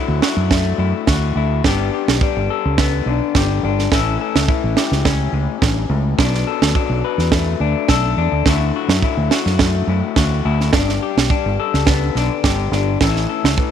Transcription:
Already playing: clean electric guitar D3 F#3 A3 E4 F#4
0.08 fingered electric bass D2
0.22 clean electric guitar F#4, snare
0.37 fingered electric bass F#2
0.51 clean electric guitar A3, kick, snare
0.78 fingered electric bass F#2, clean electric guitar A2 E4
1.07 fingered electric bass D2, clean electric guitar F#4, kick, snare
1.36 fingered electric bass D2, clean electric guitar E4
1.64 fingered electric bass G1, clean electric guitar G2 G3 B3 D4 G4, kick, snare
1.94 clean electric guitar G4
2.08 fingered electric bass B1, snare
2.21 clean electric guitar G3 D4, kick
2.36 fingered electric bass G1
2.50 clean electric guitar A4
2.65 fingered electric bass C#2
2.78 clean electric guitar B3, kick, snare
3.06 fingered electric bass B1, clean electric guitar D3 D4
3.35 fingered electric bass G1, clean electric guitar G4, kick, snare
3.63 fingered electric bass G1, clean electric guitar D4
3.79 snare
3.92 fingered electric bass A1, clean electric guitar A2 E3 C#4 E4 A4, kick, snare
4.21 clean electric guitar A4
4.35 fingered electric bass C#2, snare
4.48 clean electric guitar E3 E4, kick
4.64 fingered electric bass A1
4.77 clean electric guitar G4, snare
4.92 fingered electric bass C#2, snare
5.05 clean electric guitar C#4, kick, snare
5.32 fingered electric bass C#2, clean electric guitar A2, muted clean electric guitar stroke
5.62 fingered electric bass A1, clean electric guitar G2, kick, snare
5.90 fingered electric bass C#2, clean electric guitar A2
6.18 fingered electric bass B1, clean electric guitar B2 D4, kick, snare
6.35 snare
6.47 clean electric guitar A4
6.62 fingered electric bass D2, snare
6.75 clean electric guitar F#3 D4, kick
6.89 fingered electric bass B1
7.04 clean electric guitar B4
7.18 fingered electric bass E2, snare
7.32 clean electric guitar A3, kick, snare
7.60 fingered electric bass D2, clean electric guitar D4, muted clean electric guitar stroke
7.88 fingered electric bass B1, clean electric guitar A4, kick, snare
8.17 fingered electric bass E2, clean electric guitar D4
8.32 fingered electric bass D2
8.46 fingered electric bass D2, clean electric guitar D3 F#3 A3 E4 F#4, kick, snare
8.76 clean electric guitar F#4
8.88 fingered electric bass F#2, snare
9.02 clean electric guitar F#3 E4, kick
9.17 fingered electric bass D2
9.31 clean electric guitar F#4, snare
9.46 fingered electric bass F#2, snare
9.59 clean electric guitar A3, kick, snare
9.87 fingered electric bass F#2, clean electric guitar A2 E4
10.16 fingered electric bass D2, clean electric guitar F#4, kick, snare
10.45 fingered electric bass D2, clean electric guitar E4
10.61 snare
10.73 fingered electric bass G1, clean electric guitar G2 D4, kick, snare
10.89 snare
11.03 clean electric guitar G4
11.17 fingered electric bass B1, snare
11.30 clean electric guitar G3 D4, kick
11.46 fingered electric bass G1
11.60 clean electric guitar A4
11.74 fingered electric bass C#2, snare
11.87 clean electric guitar B3, kick, snare
12.15 fingered electric bass B1, clean electric guitar D3 D4, snare
12.44 fingered electric bass G1, clean electric guitar G4, kick, snare
12.71 fingered electric bass G1, clean electric guitar D4, snare
13.01 fingered electric bass A1, clean electric guitar A2 E3 C#4 E4 A4, kick, snare
13.16 snare
13.29 clean electric guitar A4
13.44 fingered electric bass C#2, snare
13.58 clean electric guitar E3, kick

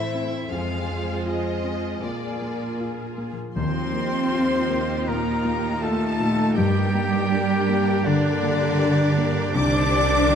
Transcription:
Already playing: cello section A2, harp A2 E3 C4 E4 E5, grand piano E3 C4 E4, viola section A3 E4, violin section E4 C5 E5
0.02 harp A4
0.15 grand piano C4
0.27 harp C4
0.51 harp F2, grand piano F2, cello section F2, viola section G#3 F4, violin section G#4 C5 F5
0.76 harp C4
0.89 grand piano C4
1.02 harp G#4
1.26 grand piano F4, violin section D#5, harp F5
1.52 harp G#4
1.64 grand piano C4
1.77 harp C4
2.03 grand piano A#2, cello section A#2, harp A#2, viola section A#3 F4, violin section G#4 A#4 D5
2.29 harp D4
2.42 grand piano A#3
2.55 harp G#4
2.80 grand piano F4, harp F5
3.06 harp G#4
3.18 grand piano A#3
3.31 harp F3
3.55 grand piano D#2, double bass section D#2, timpani D#3, harp D#3, cello section C4, viola section D#4 F4, violin section G4 C6, oboe C5, clarinet C5, flute C6
3.59 french horn section C4
3.82 harp G3
3.94 grand piano A#3
4.07 harp G4
4.32 grand piano F4, harp F5
4.58 harp G4
4.70 grand piano A#3
5.07 grand piano A#2, cello section A#3, french horn section A#3, harp D#4, oboe A#4, clarinet A#4, flute A#5, violin section A#5
5.45 grand piano A#3
5.58 harp G4
5.81 french horn section A3, cello section A3, grand piano F4, oboe A4, clarinet A4, harp F5, flute A5, violin section A5
6.07 harp G4
6.20 grand piano A#2
6.32 harp A#3
6.55 harp G2, double bass section G2, grand piano G2, french horn section G3, cello section G3, clarinet G4, viola section G4, oboe G4, violin section A#4 G5, flute G5
6.82 harp A#3
6.94 grand piano A#3
7.06 harp G4
7.31 grand piano D4, viola section D4, harp D5
7.57 harp G4
7.69 grand piano A#3
7.82 harp A#3
8.05 french horn section D3, cello section D3, grand piano D3, harp D3, clarinet D4, oboe D4, flute D5, violin section D5
8.30 harp A#3
8.43 grand piano A#3
8.55 harp G4
8.79 grand piano D4, harp D5
9.04 harp G4
9.18 grand piano A#3
9.30 harp A#3
9.54 grand piano C2, double bass section C2, harp C3, viola section D#3, french horn section D4, cello section D4, violin section C5 D6, clarinet D5, oboe D5, flute D6
9.80 harp C4
9.92 grand piano C4
10.05 harp G4
10.28 grand piano D#3

